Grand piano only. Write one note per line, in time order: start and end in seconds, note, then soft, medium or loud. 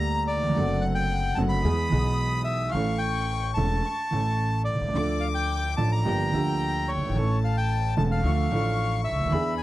0.00 0.51 D2 loud
0.00 0.52 D3 loud
0.00 0.51 G3 medium
0.00 0.52 A#3 medium
0.00 0.52 G4 medium
0.36 0.42 D#2 medium
0.43 0.49 E2 medium
0.49 0.56 F2 medium
0.54 1.33 F#2 loud
0.54 1.32 D3 medium
0.54 1.33 F#3 loud
0.54 1.33 A3 medium
0.54 1.34 C4 medium
0.54 1.34 A4 medium
1.38 1.61 F#2 loud
1.38 1.60 D3 medium
1.38 1.61 F#3 loud
1.38 1.60 A3 medium
1.38 1.60 C4 medium
1.38 1.61 F#4 medium
1.65 1.88 E2 loud
1.65 1.88 E3 loud
1.65 1.88 G#3 medium
1.65 1.88 B3 medium
1.65 1.88 G#4 loud
1.90 2.70 B1 loud
1.90 2.70 B2 loud
1.90 2.69 E3 medium
1.90 2.69 G#3 medium
1.90 2.70 B3 medium
1.94 2.71 G#4 medium
2.73 3.53 A1 loud
2.73 3.53 A2 loud
2.73 3.52 E3 medium
2.73 3.52 A3 medium
2.73 3.53 C#4 medium
2.77 3.54 A4 medium
3.57 3.80 E1 loud
3.57 3.80 E2 medium
3.57 3.80 E3 medium
3.57 3.80 A3 medium
3.57 3.80 C#4 medium
3.57 3.80 A4 medium
4.11 4.92 A1 medium
4.11 4.92 A2 medium
4.11 4.91 E3 medium
4.11 4.91 A3 medium
4.11 4.92 C#4 medium
4.15 4.93 A4 medium
4.75 4.82 B1 medium
4.82 4.88 C2 medium
4.88 4.95 C#2 medium
4.94 5.74 D2 medium
4.94 5.74 D3 medium
4.94 5.73 F3 medium
4.94 5.74 A3 medium
4.94 5.75 D4 medium
4.94 5.75 A4 medium
5.78 6.01 A1 loud
5.78 6.01 A2 medium
5.78 6.01 F3 medium
5.78 6.01 A3 medium
5.78 6.01 D4 medium
5.78 6.01 A4 loud
6.05 6.29 G1 medium
6.05 6.29 G2 loud
6.05 6.28 F3 medium
6.05 6.29 A#3 medium
6.05 6.29 D4 medium
6.05 6.29 G4 medium
6.32 7.11 D2 medium
6.32 7.11 D3 loud
6.32 7.10 F3 medium
6.32 7.11 A#3 medium
6.32 7.12 D4 medium
6.36 7.12 G4 medium
6.95 7.02 F#1 medium
7.02 7.09 G1 medium
7.09 7.15 G#1 medium
7.14 7.93 A1 loud
7.14 7.93 A2 medium
7.14 7.92 E3 medium
7.14 7.92 A3 medium
7.14 7.93 C#4 medium
7.14 7.94 A4 medium
7.97 8.19 E1 loud
7.97 8.19 E2 loud
7.97 8.19 E3 medium
7.97 8.19 A3 medium
7.97 8.19 C#4 medium
7.97 8.20 A4 medium
8.25 8.47 D2 loud
8.25 8.47 D3 loud
8.25 8.47 F3 medium
8.25 8.47 A3 medium
8.25 8.47 D4 medium
8.25 8.47 A4 loud
8.50 9.28 A1 medium
8.50 9.28 A2 loud
8.50 9.27 F3 medium
8.50 9.27 A3 medium
8.50 9.28 D4 medium
8.50 9.29 A4 medium
9.13 9.18 C#2 medium
9.19 9.25 D2 medium
9.26 9.32 D#2 medium
9.31 9.63 E2 loud
9.31 9.63 E3 medium
9.31 9.63 B3 medium
9.31 9.63 D4 medium
9.31 9.63 G#4 medium